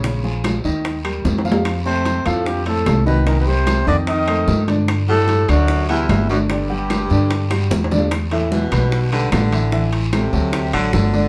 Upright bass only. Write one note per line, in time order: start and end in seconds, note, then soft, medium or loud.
0.00 0.59 A#1 medium
0.65 1.21 D#2 medium
1.25 2.20 F2 medium
2.26 2.83 F2 medium
2.86 3.81 C2 medium
3.87 4.44 F2 medium
4.47 5.42 G2 medium
5.49 6.05 D2 medium
6.09 7.04 G1 medium
7.10 7.67 G2 medium
7.71 8.66 E2 medium
8.72 9.28 B1 medium
9.32 10.27 A1 medium
10.33 10.71 D2 medium
10.73 10.92 A1 medium
10.94 11.28 G1 medium